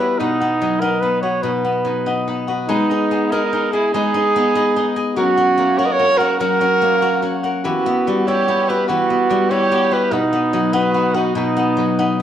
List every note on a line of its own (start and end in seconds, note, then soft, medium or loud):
0.00 0.25 E3 medium
0.00 0.25 G3 medium
0.00 0.41 B3 medium
0.00 0.22 C#4 medium
0.00 0.88 E4 medium
0.00 1.22 F#4 medium
0.00 0.19 G4 soft
0.00 0.19 B4 soft
0.00 0.20 B4 medium
0.00 0.20 E5 medium
0.19 1.42 B2 medium
0.19 0.82 D#4 medium
0.19 0.40 D#4 medium
0.19 0.41 B4 medium
0.19 0.40 D#5 medium
0.19 0.39 F#5 medium
0.40 1.02 B3 medium
0.40 0.60 B4 soft
0.40 0.61 D#5 soft
0.40 0.61 F#5 medium
0.61 1.83 F#3 medium
0.61 0.82 D#4 medium
0.61 0.81 B4 medium
0.61 0.81 D#5 medium
0.61 0.80 F#5 medium
0.80 2.06 D#4 medium
0.80 1.01 D#4 soft
0.80 1.03 A#4 medium
0.80 1.02 B4 soft
0.80 1.02 D#5 medium
0.80 1.02 F#5 medium
1.01 1.64 B3 medium
1.01 1.23 D#4 medium
1.01 1.22 B4 medium
1.01 1.23 B4 medium
1.01 1.23 D#5 medium
1.01 1.22 F#5 medium
1.22 2.47 F#4 medium
1.22 1.43 B4 soft
1.22 1.44 C#5 medium
1.22 1.43 D#5 soft
1.22 1.44 F#5 medium
1.43 2.74 B2 medium
1.43 1.64 D#4 medium
1.43 2.27 B4 medium
1.43 1.65 B4 medium
1.43 1.64 D#5 medium
1.43 1.63 F#5 medium
1.65 2.27 B3 medium
1.65 1.85 B4 soft
1.65 1.85 D#5 soft
1.65 1.85 F#5 soft
1.85 2.74 F#3 medium
1.85 2.06 D#4 medium
1.85 2.06 B4 soft
1.85 2.06 D#5 medium
1.85 2.05 F#5 soft
2.06 2.90 D#4 medium
2.06 2.26 D#4 medium
2.06 2.26 B4 soft
2.06 2.27 D#5 medium
2.06 2.27 F#5 medium
2.27 3.11 B3 medium
2.27 2.48 D#4 medium
2.27 2.48 B4 medium
2.27 2.47 D#5 medium
2.27 2.46 F#5 medium
2.47 4.91 F#4 medium
2.47 2.68 B4 soft
2.47 2.69 D#5 soft
2.47 2.69 F#5 medium
2.68 3.93 G#3 medium
2.68 3.34 B3 medium
2.68 3.33 D#4 medium
2.68 2.90 D#4 medium
2.68 2.90 G#4 medium
2.68 2.89 B4 medium
2.68 2.89 D#5 medium
2.90 3.52 D#4 medium
2.90 3.11 G#4 soft
2.90 3.11 B4 medium
2.90 3.11 D#5 medium
3.11 4.36 B3 medium
3.11 3.32 D#4 soft
3.11 3.31 G#4 medium
3.11 3.31 B4 medium
3.11 3.31 D#5 medium
3.32 3.73 D#4 medium
3.32 3.52 D#4 medium
3.32 4.55 G#4 loud
3.32 3.53 G#4 medium
3.32 3.72 A#4 medium
3.32 3.53 B4 medium
3.32 3.53 D#5 medium
3.53 4.14 D#4 medium
3.53 3.74 D#4 medium
3.53 3.74 G#4 medium
3.53 3.73 B4 medium
3.53 3.72 D#5 medium
3.73 3.92 E4 medium
3.73 3.92 G#4 medium
3.73 3.94 G#4 soft
3.73 3.94 B4 soft
3.73 3.94 D#5 medium
3.73 4.96 G#5 medium
3.94 5.21 G#3 medium
3.94 4.15 D#4 medium
3.94 4.92 D#4 medium
3.94 4.92 G#4 loud
3.94 4.15 G#4 medium
3.94 4.15 B4 medium
3.94 4.14 D#5 medium
4.14 4.76 D#4 medium
4.14 4.36 G#4 soft
4.14 4.36 B4 medium
4.14 4.35 D#5 medium
4.36 5.64 B3 loud
4.36 4.56 D#4 medium
4.36 4.56 G#4 medium
4.36 4.56 B4 medium
4.36 4.55 D#5 medium
4.55 4.75 D#4 medium
4.55 6.83 G#4 loud
4.55 4.76 G#4 medium
4.55 4.76 B4 medium
4.55 4.76 D#5 medium
4.76 4.96 D#4 medium
4.76 7.47 D#4 medium
4.76 4.97 G#4 medium
4.76 4.97 B4 medium
4.76 4.95 D#5 medium
4.96 5.17 G#4 medium
4.96 5.17 B4 medium
4.96 5.16 D#5 medium
4.96 6.46 G#5 medium
5.16 6.39 F#3 medium
5.16 5.80 C#4 medium
5.16 5.80 F#4 loud
5.16 5.37 F#4 medium
5.16 5.37 A#4 medium
5.16 5.38 C#5 medium
5.16 5.37 F#5 medium
5.38 5.99 C#4 medium
5.38 5.58 A#4 soft
5.38 5.58 C#5 soft
5.38 5.58 F#5 medium
5.58 6.81 A#3 medium
5.58 5.78 F#4 medium
5.58 5.79 A#4 medium
5.58 5.79 C#5 medium
5.58 5.78 F#5 medium
5.78 7.02 F#4 loud
5.78 5.99 F#4 medium
5.78 5.87 A#4 medium
5.78 5.99 A#4 medium
5.78 5.87 C#5 medium
5.78 5.99 C#5 medium
5.78 5.99 F#5 medium
5.85 5.92 B4 medium
5.85 5.94 D#5 medium
5.90 6.18 A#4 medium
5.90 6.19 C#5 loud
5.99 6.60 C#4 medium
5.99 6.20 F#4 medium
5.99 6.20 A#4 medium
5.99 6.20 C#5 medium
5.99 6.18 F#5 medium
6.17 6.37 F#4 medium
6.17 6.39 A#4 loud
6.17 6.39 C#5 medium
6.17 6.39 F#5 medium
6.17 7.44 F#5 medium
6.21 6.39 A#4 soft
6.38 7.69 F#3 loud
6.38 7.39 F#4 medium
6.38 6.60 F#4 medium
6.38 7.40 A#4 loud
6.38 6.60 A#4 medium
6.38 6.59 C#5 medium
6.38 6.58 F#5 medium
6.60 7.22 C#4 medium
6.60 6.80 A#4 soft
6.60 6.81 C#5 soft
6.60 6.81 F#5 medium
6.81 7.92 A#3 medium
6.81 7.02 F#4 medium
6.81 7.01 A#4 medium
6.81 7.01 C#5 medium
6.81 7.00 F#5 medium
7.01 8.13 F#4 medium
7.01 7.21 F#4 medium
7.01 7.21 A#4 medium
7.01 7.22 C#5 medium
7.01 7.23 F#5 medium
7.22 10.12 C#4 medium
7.22 7.43 F#4 medium
7.22 7.43 A#4 medium
7.22 7.43 C#5 medium
7.22 7.42 F#5 medium
7.43 7.64 A#4 medium
7.43 7.64 C#5 medium
7.43 7.64 F#5 medium
7.43 8.13 F#5 medium
7.64 8.88 E3 medium
7.64 8.23 B3 medium
7.64 7.85 F#4 medium
7.64 8.23 F#4 medium
7.64 7.85 G4 medium
7.64 7.85 B4 medium
7.64 7.85 E5 medium
7.86 8.48 B3 loud
7.86 8.06 G4 soft
7.86 8.07 B4 soft
7.86 8.06 E5 soft
8.07 9.29 G3 medium
8.07 8.27 F#4 medium
8.07 8.26 G4 medium
8.07 8.26 B4 medium
8.07 8.26 E5 medium
8.27 9.50 E4 loud
8.27 8.47 F#4 medium
8.27 8.69 G4 medium
8.27 8.48 G4 medium
8.27 8.48 B4 medium
8.27 8.71 C#5 medium
8.27 8.48 E5 medium
8.48 9.10 B3 medium
8.48 8.68 F#4 medium
8.48 8.68 G4 medium
8.48 8.68 B4 medium
8.48 8.67 E5 medium
8.68 9.36 F#4 medium
8.68 8.88 G4 medium
8.68 8.87 G4 soft
8.68 8.88 B4 medium
8.68 8.89 B4 medium
8.68 8.88 E5 medium
8.88 10.16 E3 medium
8.88 9.52 B3 medium
8.88 9.09 F#4 medium
8.88 9.53 F#4 medium
8.88 9.09 G4 medium
8.88 9.09 B4 medium
8.88 9.08 E5 medium
9.09 9.71 B3 medium
9.09 9.28 G4 soft
9.09 9.29 B4 medium
9.09 9.30 E5 medium
9.29 10.16 G3 medium
9.29 9.50 F#4 medium
9.29 9.50 G4 medium
9.29 9.50 B4 medium
9.29 9.49 E5 medium
9.50 10.79 E4 medium
9.50 9.70 F#4 medium
9.50 9.92 G4 loud
9.50 9.70 G4 medium
9.50 9.71 B4 medium
9.50 9.94 C#5 loud
9.50 9.71 E5 medium
9.71 10.32 B3 medium
9.71 9.91 F#4 medium
9.71 9.91 G4 medium
9.71 9.91 B4 medium
9.71 9.89 E5 medium
9.91 11.14 F#4 medium
9.91 10.15 G4 medium
9.91 10.12 G4 soft
9.91 10.11 B4 medium
9.91 10.14 B4 medium
9.91 10.11 E5 medium
10.11 11.34 B2 loud
10.11 10.77 B3 medium
10.11 10.32 D#4 medium
10.11 10.76 D#4 medium
10.11 10.32 B4 medium
10.11 10.33 D#5 medium
10.11 10.31 F#5 medium
10.32 10.94 B3 medium
10.32 10.52 B4 soft
10.32 10.52 D#5 medium
10.32 10.53 F#5 medium
10.53 11.76 F#3 medium
10.53 10.73 D#4 medium
10.53 10.73 B4 medium
10.53 10.73 D#5 medium
10.53 10.72 F#5 medium
10.73 11.98 D#4 loud
10.73 10.93 D#4 medium
10.73 11.19 F#4 medium
10.73 11.17 B4 medium
10.73 10.95 B4 medium
10.73 10.94 D#5 medium
10.73 10.94 F#5 medium
10.94 11.56 B3 medium
10.94 11.15 D#4 medium
10.94 11.15 B4 medium
10.94 11.15 D#5 medium
10.94 11.15 F#5 medium
11.14 11.36 D#4 medium
11.14 12.22 F#4 medium
11.14 11.35 F#4 medium
11.14 11.36 B4 soft
11.14 11.36 D#5 medium
11.14 11.36 F#5 medium
11.35 12.22 B2 medium
11.35 12.17 B3 medium
11.35 12.15 D#4 medium
11.35 11.57 D#4 medium
11.35 11.57 B4 medium
11.35 11.57 D#5 medium
11.35 11.56 F#5 medium
11.57 12.19 B3 medium
11.57 11.77 B4 soft
11.57 11.78 D#5 medium
11.57 11.77 F#5 medium
11.77 12.22 F#3 medium
11.77 11.98 D#4 medium
11.77 11.98 B4 medium
11.77 11.98 D#5 medium
11.77 11.98 F#5 medium
11.99 12.22 D#4 medium
11.99 12.19 D#4 medium
11.99 12.20 B4 medium
11.99 12.20 D#5 medium
11.99 12.19 F#5 medium